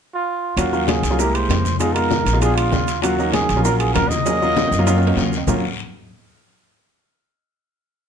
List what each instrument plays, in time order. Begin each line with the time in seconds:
0.13 trumpet F4
0.57 upright bass D#2, grand piano F#3 A#3 C#4 F4, trumpet F#4, high bongo, high conga, high timbale, long guiro, maracas
0.72 grand piano F#3 A#3 C#4 F4, high bongo, high conga, maracas
0.88 trumpet G#4, high bongo, high conga, high timbale, low timbale, short guiro, maracas
1.03 upright bass C2, high conga, high timbale, short guiro, maracas
1.11 grand piano F#3 A#3 C#4 F4
1.18 grand piano G#3 A#3 E4 G4, trumpet A#4, high bongo, high conga, long guiro, maracas
1.34 trumpet C5, high conga, high timbale, maracas
1.49 upright bass F2, high bongo, low bongo, high conga, high timbale, low timbale, short guiro, maracas
1.65 high bongo, high conga, short guiro, maracas
1.79 grand piano G#3 B3 D#4 F4, trumpet G#4, high bongo, high conga, high timbale, long guiro, maracas
1.93 grand piano G#3 B3 D#4 F4, trumpet A#4, high bongo, high conga, high timbale, maracas
2.10 high bongo, high conga, low timbale, short guiro, maracas
2.26 upright bass A#1, high bongo, high conga, high timbale, short guiro, maracas
2.33 grand piano G#3 B3 D#4 F4
2.41 grand piano G#3 B3 D4 F4, trumpet G#4, high bongo, high conga, high timbale, long guiro, maracas
2.56 trumpet F4, high conga, high timbale, maracas
2.72 upright bass D#2, high bongo, low bongo, high conga, low timbale, short guiro, maracas
2.88 high bongo, high conga, high timbale, short guiro, maracas
3.02 grand piano F#3 A#3 C#4 F4, trumpet F#4, high bongo, high conga, high timbale, long guiro, maracas
3.18 grand piano F#3 A#3 C#4 D#4, high bongo, high conga, maracas
3.33 trumpet G#4, high bongo, high conga, high timbale, low timbale, short guiro, maracas
3.49 upright bass A#1, high bongo, high conga, high timbale, short guiro, maracas
3.56 grand piano F#3 A#3 C#4 F4
3.64 grand piano F#3 A#3 C#4 F4, trumpet A#4, high bongo, high conga, long guiro, maracas
3.78 trumpet G#4, high conga, high timbale, maracas
3.94 upright bass D#2, trumpet A#4, high bongo, low bongo, high conga, high timbale, low timbale, short guiro, maracas
4.09 trumpet D#5, high bongo, high conga, short guiro, maracas
4.25 grand piano F#3 A#3 C#4 G#4, high bongo, high conga, high timbale, long guiro, maracas
4.42 grand piano F#3 A#3 C#4 F4, high bongo, high conga, maracas
4.56 high bongo, high conga, high timbale, short guiro, maracas
4.68 upright bass F#2, low timbale
4.72 high bongo, high conga, short guiro, maracas
4.79 grand piano F#3 A#3 C#4 F4
4.86 grand piano F#3 A#3 C#4 F4, high bongo, high conga, low timbale, long guiro, maracas
4.98 low timbale
5.02 high conga, maracas
5.07 low timbale
5.16 upright bass D#2, high bongo, low bongo, high conga, low timbale, short guiro, maracas
5.32 high bongo, high conga, short guiro, maracas
5.37 low timbale
5.47 upright bass D#2, grand piano F#3 A#3 C#4 F4, low bongo, low conga, low timbale, long guiro, maracas